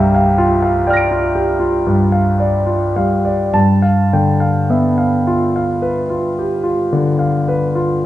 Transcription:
0.00 3.48 C2 medium
0.00 0.20 G2 soft
0.00 0.67 G3 soft
0.00 0.14 E5 soft
0.00 0.15 F5 medium
0.00 0.87 G5 soft
0.00 3.56 A#5 medium
0.15 0.53 F5 medium
0.38 0.77 F4 medium
0.63 1.01 F5 soft
0.87 1.26 D5 soft
0.87 3.49 G5 soft
0.87 3.51 F6 soft
0.93 3.52 A#6 soft
0.93 3.54 D7 soft
1.11 1.51 F4 soft
1.35 1.61 G4 soft
1.60 2.02 F4 soft
1.87 2.30 G2 soft
2.12 2.57 F5 soft
2.40 2.84 D5 soft
2.66 3.12 F4 soft
2.96 3.53 G3 soft
2.96 3.41 F5 soft
3.25 3.53 D5 soft
3.53 8.06 G2 soft
3.53 3.99 A5 medium
3.82 4.28 F5 soft
4.13 5.04 D3 soft
4.13 4.40 G5 soft
4.40 4.86 F5 soft
4.70 5.61 B3 soft
4.70 4.98 E5 soft
4.98 5.43 F5 soft
5.27 5.72 F4 soft
5.56 5.99 F5 soft
5.82 6.26 B4 soft
6.10 6.53 F4 soft
6.39 6.65 G4 soft
6.64 7.07 F4 soft
6.93 7.35 D3 soft
7.19 7.63 F5 soft
7.48 7.92 B4 soft
7.75 8.06 F4 soft

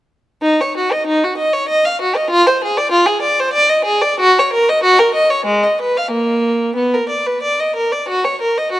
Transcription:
0.42 0.59 D#4 medium
0.61 0.77 C#5 medium
0.77 0.93 F#4 medium
0.92 1.08 D#5 medium
1.07 1.23 D#4 medium
1.24 1.40 F#4 medium
1.37 1.54 D#5 medium
1.53 1.70 C#5 medium
1.68 1.84 D#5 medium
1.85 2.01 F5 medium
2.01 2.16 F#4 medium
2.16 2.32 D#5 medium
2.30 2.46 F4 medium
2.47 2.62 C5 medium
2.64 2.78 G#4 medium
2.77 2.93 D5 medium
2.92 3.08 F4 medium
3.06 3.23 G#4 medium
3.22 3.38 D5 medium
3.40 3.55 C5 medium
3.53 3.69 D5 medium
3.69 3.86 D#5 medium
3.85 4.01 G#4 medium
4.02 4.19 D5 medium
4.20 4.36 F#4 loud
4.39 4.54 C#5 medium
4.53 4.68 A#4 medium
4.69 4.84 D#5 medium
4.84 4.99 F#4 medium
4.99 5.15 A#4 medium
5.14 5.30 D#5 medium
5.30 5.46 C#5 medium
5.46 5.62 G#3 medium
5.64 5.79 D#5 medium
5.81 5.96 B4 medium
5.97 6.12 F5 medium
6.11 6.75 A#3 medium
6.76 6.92 B3 medium
6.94 7.10 A#4 medium
7.09 7.25 D5 soft
7.26 7.43 B4 medium
7.42 7.58 D5 medium
7.60 7.76 D#5 medium
7.76 7.92 A#4 medium
7.92 8.08 D5 medium
8.09 8.24 F#4 medium
8.24 8.40 C#5 medium
8.42 8.56 A#4 medium
8.58 8.72 D#5 medium
8.72 8.80 F#4 medium

